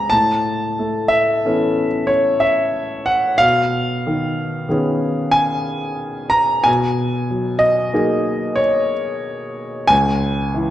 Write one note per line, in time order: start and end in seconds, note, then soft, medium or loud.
0.00 0.14 F3 soft
0.00 0.14 G#3 soft
0.00 0.14 C4 soft
0.00 0.14 G#4 soft
0.00 0.14 G#5 medium
0.00 0.14 A#5 medium
0.10 3.39 A2 soft
0.10 1.11 A5 medium
0.79 1.85 A3 soft
1.08 2.09 E5 medium
1.45 3.39 E3 soft
1.45 3.39 B3 soft
1.45 3.39 C#4 soft
1.45 3.39 A4 soft
2.07 2.42 C#5 medium
2.40 3.08 E5 medium
3.06 3.41 F#5 medium
3.38 6.62 B2 soft
3.38 5.34 F5 medium
4.07 4.67 D#3 soft
4.69 6.62 D#3 soft
4.69 6.62 B3 soft
4.69 6.63 C#4 soft
4.69 6.63 G#4 soft
5.31 6.32 G#5 medium
6.30 6.65 A#5 loud
6.64 9.86 B2 medium
6.64 7.62 G#5 medium
7.30 7.92 F#3 soft
7.59 8.57 D#5 medium
7.93 9.86 F#3 soft
7.93 9.86 A#3 soft
7.93 9.86 D#4 soft
7.93 9.87 G#4 soft
8.56 8.91 C#5 medium
9.87 10.70 C#2 medium
9.87 10.70 G#5 loud
10.54 10.70 E3 soft